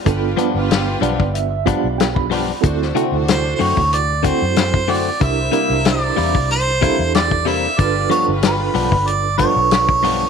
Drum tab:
HH |x-x-x-x-x-x-x-o-|x-x-x-o-x-x-x-o-|x-x-x-o-x-x-x-o-|x-x-x-o-x-x-x-o-|
SD |----o-------o---|-o--o-------o---|----o-------o---|----o-------o---|
BD |o------o--o--o--|o------o--o--o--|o------o--o--o--|o------o--o--o--|